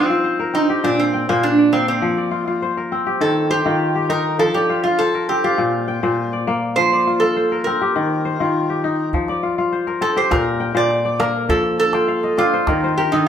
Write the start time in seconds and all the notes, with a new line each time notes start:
Already playing: F3 C4 D#4 G4 A4
0.10 F4
0.24 C5
0.39 A#4
0.54 C4 D#4
0.70 G4
0.84 A#2 D4
1.00 C4
1.14 G5
1.29 A#2 A#3 C5
1.43 D4
1.59 D5
1.73 A#3 C4
1.88 C4
2.02 F3
2.17 D5
2.31 F4
2.47 F4
2.62 C5
2.77 A#4
2.92 C4
3.07 G4
3.21 D#3 A4
3.50 G4 C5
3.66 D#3 F4
3.95 G4
4.09 D#4 A#4
4.39 F3 A4
4.54 G4 D5
4.70 F4
4.84 F4
4.99 A4 C5
5.15 A#4
5.29 C4 G4
5.44 F4 G4
5.58 A#2
5.88 G5
6.03 A#2 C5
6.33 D5
6.47 A#3
6.76 F3 C5
6.93 D5
7.07 F4
7.20 F4 A4
7.36 C5
7.52 A#4
7.64 C4 A#4
7.81 G4
7.96 D#3
8.25 C5
8.40 D#3 F4
8.70 G4
8.84 D#4
9.13 F3, calabash thump
9.28 D5, calabash click
9.43 F4
9.58 F4
9.72 C5
9.87 A#4, calabash click
10.01 C4 A4, calabash click
10.16 G4 C5
10.31 A#2 A#4, calabash thump, calabash click
10.60 G5
10.75 A#2 C5 D5, calabash click
10.91 calabash click
11.05 D5, calabash click
11.19 A#3 A#4, calabash click
11.49 F3 A4, calabash thump
11.64 calabash click
11.80 A4
11.93 F4 G5, calabash click
12.08 F5
12.23 D#5, calabash click
12.37 C4 F4 D5, calabash click
12.53 C5
12.67 D#3 A#4, calabash thump, calabash click
12.84 C5
12.97 G4 A#4
13.12 D#3 D#4 A4, calabash click